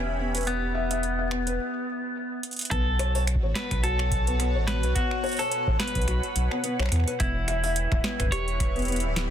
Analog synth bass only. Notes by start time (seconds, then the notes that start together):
Already playing: E1
2.71 B1
3.43 A1
3.71 B1
4.55 A1
4.83 B1
5.67 A1
5.95 B1
6.08 B1
6.36 B1
6.79 B1
6.92 E2
7.20 E1
7.92 D1
8.20 E1
9.04 D1